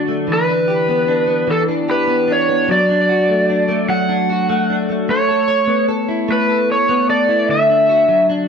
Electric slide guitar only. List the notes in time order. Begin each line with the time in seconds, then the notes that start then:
0.33 B4
1.51 A4
1.91 B4
2.32 C#5
2.72 D5
3.90 F#5
5.10 C#5
6.32 B4
6.72 C#5
7.10 D5
7.51 E5